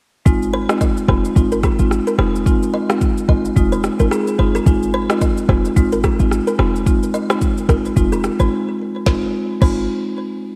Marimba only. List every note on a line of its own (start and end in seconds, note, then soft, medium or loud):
0.26 0.65 G#3 medium
0.26 0.66 C4 medium
0.26 0.66 D#4 medium
0.26 0.66 F4 loud
0.69 0.88 G#3 medium
0.69 0.88 C4 medium
0.69 0.88 D#4 medium
0.69 0.88 F4 medium
1.08 1.29 G#3 medium
1.08 1.30 C4 medium
1.08 1.30 D#4 medium
1.08 1.30 F4 medium
1.36 1.75 G#3 medium
1.36 1.76 C4 medium
1.36 1.76 D#4 medium
1.36 1.76 F4 loud
1.79 1.98 G#3 medium
1.79 1.98 C4 medium
1.79 1.98 D#4 medium
1.79 1.98 F4 medium
2.18 2.40 G#3 medium
2.18 2.40 C4 medium
2.18 2.40 D#4 medium
2.18 2.40 F4 medium
2.46 2.86 G#3 medium
2.46 2.86 C4 medium
2.46 2.86 D#4 medium
2.46 2.86 F4 loud
2.89 3.08 G#3 medium
2.89 3.08 C4 medium
2.89 3.08 D#4 medium
2.89 3.08 F4 medium
3.28 3.50 G#3 medium
3.28 3.50 C4 medium
3.28 3.50 D#4 medium
3.28 3.50 F4 medium
3.56 3.96 G#3 medium
3.56 3.96 C4 medium
3.56 3.96 D#4 medium
3.56 3.96 F4 loud
3.99 4.18 G#3 medium
3.99 4.18 C4 medium
3.99 4.18 D#4 medium
3.99 4.18 F4 medium
4.38 4.60 G#3 medium
4.38 4.60 C4 medium
4.38 4.60 D#4 medium
4.38 4.60 F4 medium
4.66 5.06 G#3 medium
4.66 5.06 C4 medium
4.66 5.06 D#4 medium
4.66 5.06 F4 loud
5.09 5.28 G#3 medium
5.09 5.28 C4 medium
5.09 5.29 D#4 medium
5.09 5.29 F4 medium
5.49 5.70 G#3 medium
5.49 5.70 C4 medium
5.49 5.70 D#4 medium
5.49 5.70 F4 medium
5.76 6.16 G#3 medium
5.76 6.16 C4 medium
5.76 6.16 D#4 medium
5.76 6.16 F4 loud
6.20 6.38 G#3 medium
6.20 6.39 C4 medium
6.20 6.39 D#4 medium
6.20 6.39 F4 medium
6.58 6.80 G#3 medium
6.58 6.80 C4 medium
6.58 6.80 D#4 medium
6.58 6.80 F4 medium
6.86 7.26 G#3 medium
6.86 7.26 C4 medium
6.86 7.26 D#4 medium
6.86 7.26 F4 loud
7.30 7.49 G#3 medium
7.30 7.49 C4 medium
7.30 7.49 D#4 medium
7.30 7.49 F4 medium
7.69 7.90 G#3 medium
7.69 7.90 C4 medium
7.69 7.90 D#4 medium
7.69 7.90 F4 medium
7.96 8.36 G#3 medium
7.96 8.36 C4 medium
7.96 8.36 D#4 medium
7.96 8.36 F4 loud
8.40 8.51 G#3 medium
8.40 8.51 C4 medium
8.40 8.52 D#4 medium
8.40 8.52 F4 medium
9.06 9.23 G#3 medium
9.06 9.23 C4 medium
9.06 9.24 D#4 medium
9.06 9.24 F4 medium
9.61 9.83 G#3 medium
9.61 9.83 C4 medium
9.61 9.83 D#4 medium
9.61 9.83 F4 medium